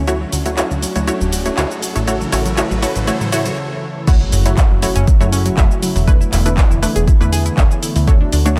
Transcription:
Already playing: analog synth bass D2, analog synth pad A3, riser
0.07 analog synth pad F#3 C#4 D4 F#4, synth pluck A3 E4 F#4 C#5, synth arpeggio sound F#4, closed hi-hat, shaker
0.21 synth arpeggio sound F#3
0.32 analog synth bass D2, synth arpeggio sound F#3, open hi-hat, shaker
0.46 synth arpeggio sound F#3, synth pluck A3 E4 F#4 C#5, closed hi-hat, shaker
0.57 synth pluck A3 E4 F#4 C#5, synth arpeggio sound F#4, clap, closed hi-hat, shaker
0.71 analog synth bass D2, synth arpeggio sound F#3, shaker
0.82 synth arpeggio sound F#3, open hi-hat, shaker
0.96 analog synth bass D2, synth arpeggio sound F#3, synth pluck A3 E4 F#4 C#5, closed hi-hat, shaker
1.07 synth pluck A3 E4 F#4 C#5, synth arpeggio sound F#4, closed hi-hat, shaker
1.21 analog synth bass D1, synth arpeggio sound F#3, shaker
1.33 synth arpeggio sound F#3, open hi-hat, shaker
1.46 synth arpeggio sound F#3, synth pluck A3 E4 F#4 C#5, closed hi-hat, shaker
1.57 analog synth bass D2, synth pluck A3 E4 F#4 C#5, synth arpeggio sound F#4, clap, closed hi-hat, shaker
1.71 synth arpeggio sound F#3, shaker
1.82 synth arpeggio sound F#3, open hi-hat, shaker
1.96 analog synth bass A1, synth arpeggio sound F#3, synth pluck A3 E4 F#4 C#5, closed hi-hat, shaker
2.07 analog synth pad C#3 E3 E4 A4, synth pluck A3 E4 F#4 C#5, synth arpeggio sound F#4, closed hi-hat, shaker
2.21 synth arpeggio sound F#3, shaker
2.32 analog synth bass A1, synth pluck A3 E4 F#4 C#5, synth arpeggio sound F#4, clap, open hi-hat, shaker
2.46 synth arpeggio sound F#3, closed hi-hat, shaker
2.57 synth pluck A3 E4 F#4 C#5, synth arpeggio sound F#4, clap, closed hi-hat, shaker
2.71 analog synth bass A1, synth arpeggio sound F#3, shaker
2.82 synth pluck A3 E4 F#4 C#5, synth arpeggio sound F#4, open hi-hat, shaker
2.96 analog synth bass A1, synth arpeggio sound F#3, closed hi-hat, shaker
3.07 synth pluck A3 E4 F#4 C#5, synth arpeggio sound F#4, closed hi-hat, shaker
3.21 analog synth bass A2, synth arpeggio sound F#3, shaker
3.32 synth pluck A3 E4 F#4 C#5, synth arpeggio sound F#4, open hi-hat, shaker
3.46 synth arpeggio sound F#3, closed hi-hat, shaker
4.07 analog synth pad C#3 F#3 A3 E4 F#4, synth pluck A3 E4 F#4 C#5, synth arpeggio sound F#4, kick, closed hi-hat, crash, impact, shaker
4.21 synth arpeggio sound F#3
4.32 analog synth bass F#1, synth arpeggio sound F#3, open hi-hat, shaker
4.46 synth arpeggio sound F#3, synth pluck A3 E4 F#4 C#5, closed hi-hat, shaker
4.57 synth arpeggio sound F#4, kick, clap, closed hi-hat, shaker
4.71 analog synth bass F#1, synth arpeggio sound F#3
4.82 synth arpeggio sound F#3, synth pluck A3 E4 F#4 C#5, open hi-hat, shaker
4.96 analog synth bass F#1, synth arpeggio sound C#4, closed hi-hat, shaker
5.07 synth arpeggio sound F#3, kick, closed hi-hat, shaker
5.21 analog synth bass F#2, synth arpeggio sound F#3, synth pluck A3 E4 F#4 C#5, shaker
5.33 synth arpeggio sound C#4, open hi-hat, shaker
5.46 synth arpeggio sound F#3, closed hi-hat, shaker
5.57 analog synth bass F#1, synth arpeggio sound F#3, synth pluck A3 E4 F#4 E5, kick, clap, closed hi-hat, shaker
5.71 shaker
5.82 synth arpeggio sound F#3, open hi-hat, shaker
5.96 analog synth bass E1, synth arpeggio sound F#3, open hi-hat, shaker
6.07 analog synth pad D3 E3 B3, synth pluck A3 D4 E4 B4, synth arpeggio sound B4, kick, closed hi-hat, shaker
6.21 synth arpeggio sound E4, shaker
6.32 analog synth bass E1, synth arpeggio sound E4, clap, open hi-hat, shaker
6.46 synth pluck A3 D4 E4 B4, synth arpeggio sound E4, closed hi-hat, shaker
6.57 synth arpeggio sound B4, kick, clap, closed hi-hat, shaker
6.71 analog synth bass E1, synth arpeggio sound E4, shaker
6.83 synth pluck A3 D4 E4 B4, synth arpeggio sound E4, open hi-hat, shaker
6.96 analog synth bass E1, synth arpeggio sound G#4, closed hi-hat, shaker
7.08 synth arpeggio sound E4, kick, closed hi-hat, shaker
7.21 analog synth bass E2, synth pluck A3 D4 E4 B4, synth arpeggio sound E4, shaker
7.33 synth arpeggio sound G#4, open hi-hat, shaker
7.46 synth arpeggio sound E4, closed hi-hat, shaker
7.57 analog synth bass E1, synth pluck A3 D4 E4 C#5, synth arpeggio sound E4, kick, clap, closed hi-hat, shaker
7.71 shaker
7.83 synth arpeggio sound E4, open hi-hat, shaker
7.96 analog synth bass D2, synth arpeggio sound E4, open hi-hat, shaker
8.07 analog synth pad D3 F#3 D4 F#4, synth pluck A3 D4 F#4 C#5, synth arpeggio sound A4, kick, closed hi-hat, shaker
8.21 synth arpeggio sound D4
8.32 analog synth bass D2, synth arpeggio sound D4, open hi-hat, shaker
8.46 synth pluck A3 D4 F#4 C#5, synth arpeggio sound D4, closed hi-hat, shaker

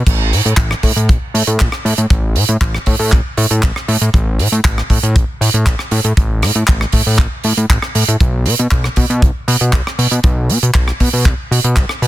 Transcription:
0.07 analog synth bass A1, kick, closed hi-hat, crash
0.33 analog synth bass A2, open hi-hat
0.45 analog synth bass A2, closed hi-hat
0.57 analog synth bass A1, kick, clap, closed hi-hat
0.71 cross-stick
0.83 analog synth bass A2, kick, open hi-hat
0.96 analog synth bass A2, closed hi-hat
1.09 analog synth bass A1, kick, closed hi-hat
1.34 analog synth bass A2, open hi-hat
1.47 analog synth bass A2, closed hi-hat
1.59 analog synth bass A1, kick, clap, closed hi-hat
1.72 cross-stick
1.85 analog synth bass A2, open hi-hat
1.98 analog synth bass A2, closed hi-hat
2.10 analog synth bass A1, kick, closed hi-hat
2.36 analog synth bass A2, open hi-hat
2.49 analog synth bass A2, closed hi-hat
2.61 analog synth bass A1, kick, clap, closed hi-hat
2.75 cross-stick
2.86 analog synth bass A2, kick, open hi-hat
2.99 analog synth bass A2, open hi-hat
3.12 analog synth bass A1, kick, clap
3.37 analog synth bass A2, open hi-hat
3.51 analog synth bass A2, closed hi-hat
3.63 analog synth bass A1, kick, clap, closed hi-hat
3.76 cross-stick
3.88 analog synth bass A2, open hi-hat
4.01 analog synth bass A2, closed hi-hat
4.14 analog synth bass A1, kick, closed hi-hat
4.39 analog synth bass A2, open hi-hat
4.52 analog synth bass A2, closed hi-hat
4.65 analog synth bass A1, kick, clap, closed hi-hat
4.78 cross-stick
4.90 analog synth bass A2, kick, open hi-hat
5.03 analog synth bass A2, closed hi-hat
5.16 analog synth bass A1, kick, closed hi-hat
5.41 analog synth bass A2, open hi-hat
5.54 analog synth bass A2, closed hi-hat
5.66 analog synth bass A1, kick, clap, closed hi-hat
5.79 cross-stick
5.91 analog synth bass A2, open hi-hat
6.04 analog synth bass A2, closed hi-hat
6.17 analog synth bass A1, kick, closed hi-hat
6.42 analog synth bass A2, cross-stick, open hi-hat
6.55 analog synth bass A2, closed hi-hat
6.67 analog synth bass A1, kick, clap, closed hi-hat
6.81 cross-stick
6.92 analog synth bass A2, kick, open hi-hat
7.06 analog synth bass A2, open hi-hat
7.18 analog synth bass A1, kick, clap
7.44 analog synth bass A2, open hi-hat
7.57 analog synth bass A2, closed hi-hat
7.70 analog synth bass A1, kick, clap, closed hi-hat
7.82 cross-stick
7.95 analog synth bass A2, open hi-hat
8.08 analog synth bass A2, closed hi-hat
8.21 analog synth bass B1, kick, closed hi-hat
8.46 analog synth bass B2, open hi-hat
8.59 analog synth bass B2, closed hi-hat
8.71 analog synth bass B1, kick, clap, closed hi-hat
8.84 cross-stick
8.96 analog synth bass B2, kick, open hi-hat
9.10 analog synth bass B2, closed hi-hat
9.22 analog synth bass B1, kick, closed hi-hat
9.48 analog synth bass B2, open hi-hat
9.61 analog synth bass B2, closed hi-hat
9.73 analog synth bass B1, kick, clap, closed hi-hat
9.87 cross-stick
9.98 analog synth bass B2, open hi-hat
10.11 analog synth bass B2, closed hi-hat
10.24 analog synth bass B1, kick, closed hi-hat
10.50 analog synth bass B2, open hi-hat
10.63 analog synth bass B2, closed hi-hat
10.74 analog synth bass B1, kick, clap, closed hi-hat
10.88 cross-stick
11.00 analog synth bass B2, kick, open hi-hat
11.13 analog synth bass B2, open hi-hat
11.25 analog synth bass B1, kick, clap
11.51 analog synth bass B2, open hi-hat
11.64 analog synth bass B2, closed hi-hat
11.76 analog synth bass B1, kick, clap, closed hi-hat
11.89 cross-stick
12.02 analog synth bass B2, open hi-hat

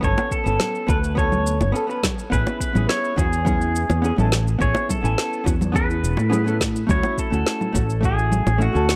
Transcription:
0.01 fretless electric bass G1, hollow-body jazz guitar B3 C#4 A4, pedal steel guitar C#5, kick, shaker
0.18 high bongo, shaker
0.31 pedal steel guitar A4, kick, shaker
0.44 fretless electric bass G1, hollow-body jazz guitar B3 C#4 A4, shaker
0.60 snare, low conga, shaker
0.75 shaker
0.87 fretless electric bass D2, hollow-body jazz guitar B3 C#4 A4, pedal steel guitar B4, kick, high bongo, shaker
1.04 shaker
1.15 hollow-body jazz guitar B3 C#4 A4, pedal steel guitar C#5, kick, shaker
1.32 low conga, shaker
1.47 shaker
1.60 fretless electric bass G1, high bongo, shaker
1.72 hollow-body jazz guitar B3 C#4 A4, shaker
1.87 hollow-body jazz guitar B3 C#4 B4, shaker
2.03 kick, snare, low conga, shaker
2.19 shaker
2.30 fretless electric bass A1, hollow-body jazz guitar B3 C#4 E4 G#4, pedal steel guitar B4, kick, shaker
2.47 high bongo, shaker
2.60 pedal steel guitar B4, kick, shaker
2.73 fretless electric bass A1, hollow-body jazz guitar B3 C#4 E4, low conga, shaker
2.77 hollow-body jazz guitar G#4
2.89 pedal steel guitar C#5, snare, shaker
3.04 shaker
3.16 fretless electric bass E2, hollow-body jazz guitar B3 C#4 F#4, pedal steel guitar G#4, kick, high bongo, shaker
3.33 shaker
3.45 hollow-body jazz guitar B3 C#4 E4 G#4, kick, low conga, shaker
3.61 shaker
3.76 shaker
3.89 fretless electric bass E2, high bongo, shaker
4.02 hollow-body jazz guitar B3 C#4 G#4, shaker
4.16 fretless electric bass A1, hollow-body jazz guitar B3 C#4 E4 A4, low conga, shaker
4.32 snare, shaker
4.47 shaker
4.59 fretless electric bass A1, hollow-body jazz guitar B3 C#4 E4 G#4, pedal steel guitar C#5, kick, shaker
4.75 high bongo, shaker
4.89 pedal steel guitar A4, kick, low conga, shaker
5.02 fretless electric bass A1, hollow-body jazz guitar B3 C#4 E4 G#5, shaker
5.18 snare, shaker
5.33 shaker
5.44 fretless electric bass E2, hollow-body jazz guitar B3 C#4 F#4, kick, high bongo, shaker
5.61 low conga, shaker
5.72 hollow-body jazz guitar B3 C#4 E4 G#4, pedal steel guitar B4, kick, shaker
5.90 shaker
6.03 fretless electric bass E1, shaker
6.17 fretless electric bass A2, high bongo, shaker
6.30 hollow-body jazz guitar B3 C#4 E4 G#4, low conga, shaker
6.44 hollow-body jazz guitar B3 C#4 E4 A4, shaker
6.61 kick, snare, shaker
6.76 shaker
6.87 fretless electric bass D2, hollow-body jazz guitar A3 C#4 E4 F#4, kick, low conga, shaker
6.91 pedal steel guitar C#5
7.03 high bongo, shaker
7.18 pedal steel guitar A4, kick, shaker
7.30 fretless electric bass D2, hollow-body jazz guitar A3 C#4 E4 F#4, shaker
7.47 snare, shaker
7.61 low conga, shaker
7.73 fretless electric bass A1, hollow-body jazz guitar A3 C#4 F#4, kick, high bongo, shaker
7.90 shaker
8.01 hollow-body jazz guitar A3 C#4 E4, kick, shaker
8.05 hollow-body jazz guitar F#4, pedal steel guitar G#4
8.19 shaker
8.32 low conga, shaker
8.46 fretless electric bass A1, high bongo, shaker
8.58 hollow-body jazz guitar A3 C#4 E4 F#4, shaker
8.63 pedal steel guitar F#4
8.72 fretless electric bass D2, hollow-body jazz guitar A3 C#4 A4, shaker
8.89 snare, shaker

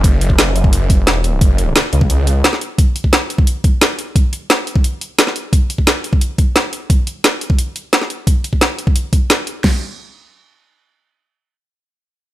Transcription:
Already playing: detuned saw bass F#1
0.04 kick, closed hi-hat
0.21 closed hi-hat
0.30 kick
0.39 snare, closed hi-hat
0.56 closed hi-hat
0.64 kick
0.73 closed hi-hat
0.90 kick, closed hi-hat
1.07 detuned saw bass E1, snare, closed hi-hat
1.24 closed hi-hat
1.41 detuned saw bass F#1, kick, closed hi-hat
1.58 closed hi-hat
1.76 snare, closed hi-hat
1.93 detuned saw bass C#2, closed hi-hat
2.01 kick
2.10 closed hi-hat
2.27 closed hi-hat
2.44 snare, closed hi-hat
2.53 snare
2.61 closed hi-hat
2.78 kick, closed hi-hat
2.96 closed hi-hat
3.04 kick
3.13 snare, closed hi-hat
3.30 closed hi-hat
3.38 kick
3.47 closed hi-hat
3.64 kick, closed hi-hat
3.81 snare, closed hi-hat
3.99 closed hi-hat
4.16 kick, closed hi-hat
4.33 closed hi-hat
4.50 snare, closed hi-hat
4.67 closed hi-hat
4.76 kick
4.84 closed hi-hat
5.01 closed hi-hat
5.19 snare, closed hi-hat
5.27 snare
5.36 closed hi-hat
5.53 kick, closed hi-hat
5.70 closed hi-hat
5.78 kick
5.87 snare, closed hi-hat
6.04 closed hi-hat
6.13 kick
6.21 closed hi-hat
6.38 kick, closed hi-hat
6.56 snare, closed hi-hat
6.73 closed hi-hat
6.90 kick, closed hi-hat
7.07 closed hi-hat
7.24 snare, closed hi-hat
7.41 closed hi-hat
7.50 kick
7.59 closed hi-hat
7.76 closed hi-hat
7.93 snare, closed hi-hat
8.01 snare
8.10 closed hi-hat
8.27 kick, closed hi-hat
8.44 closed hi-hat
8.53 kick
8.61 snare, closed hi-hat
8.79 closed hi-hat
8.87 kick
8.96 closed hi-hat
9.13 kick, closed hi-hat
9.30 snare, closed hi-hat
9.47 closed hi-hat
9.64 kick, snare, crash

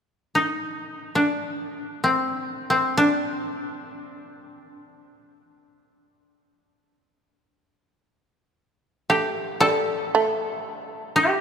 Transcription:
0.35 koto D#4
1.15 koto D4
2.04 koto C4
2.70 koto C4
2.97 koto D4
9.10 shamisen A3, koto G4
9.61 shamisen G3, koto A4
10.15 shamisen A3
10.40 koto G#4
10.59 koto G4
11.16 koto G4

